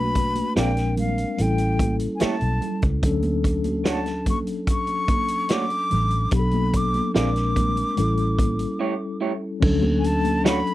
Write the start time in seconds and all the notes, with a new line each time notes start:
Already playing: B1 A3 D4 F#4 B4 B5
0.15 kick, closed hi-hat
0.35 closed hi-hat, high conga
0.55 A#1 G#3 C4 D4 F4 G#4 A#4 D5 G5, snare, closed hi-hat, high conga
0.77 snare, closed hi-hat
0.97 F5, closed hi-hat, high conga, low conga
1.18 closed hi-hat
1.38 A1 G3 C4 E4 A4, closed hi-hat, muted conga
1.42 C#4 G5
1.58 closed hi-hat, muted conga
1.79 kick, closed hi-hat, high conga
2.00 closed hi-hat
2.16 G#5
2.20 A3 E4 G4 C#5 A5, muted fingered electric bass stroke, snare, closed hi-hat, muted conga, high conga
2.41 B1, closed hi-hat
2.61 closed hi-hat, low conga
2.82 C#2, kick, closed hi-hat
3.02 D2 F#3 C#4 D4 A4, kick, closed hi-hat
3.22 closed hi-hat, muted conga, high conga
3.44 kick, closed hi-hat
3.64 closed hi-hat, high conga
3.84 A3 D4 F#4 C#5, snare, closed hi-hat, muted conga, high conga
3.90 A5
4.06 snare, closed hi-hat, muted conga
4.26 C#6, kick, closed hi-hat, high conga, low conga
4.47 closed hi-hat
4.67 C#6, kick, closed hi-hat
4.87 closed hi-hat, muted conga
5.08 kick, closed hi-hat, high conga
5.28 closed hi-hat
5.49 A3 D4 F#4 C#5, snare, closed hi-hat, muted conga, high conga
5.53 D6
5.70 closed hi-hat, muted conga
5.91 A1, closed hi-hat, low conga
6.11 closed hi-hat
6.31 B1 F#3 B3 D4 G4, kick, closed hi-hat
6.35 B5
6.39 A4
6.51 closed hi-hat, high conga
6.73 D6, kick, closed hi-hat
6.94 closed hi-hat, high conga
7.14 A#1 G#3 C4 D4 F4 G#4 A#4 D5 D6, snare, closed hi-hat, high conga
7.36 snare, closed hi-hat
7.56 kick, closed hi-hat, high conga, low conga
7.77 closed hi-hat
7.96 A1 G3 C#4 E4 A4, closed hi-hat, muted conga
8.17 closed hi-hat
8.39 kick, closed hi-hat, high conga
8.59 closed hi-hat
8.79 A3 E4 G4 C#5
9.21 A3 E4 G4 C#5
9.60 D2 F#3 C#4 D4 A4, kick, crash, muted conga, low conga
9.83 muted conga, high conga
9.99 G#5
10.04 A5, closed hi-hat
10.25 closed hi-hat, high conga
10.44 A3 D4 F#4 C#5 B5, snare, closed hi-hat, high conga
10.67 closed hi-hat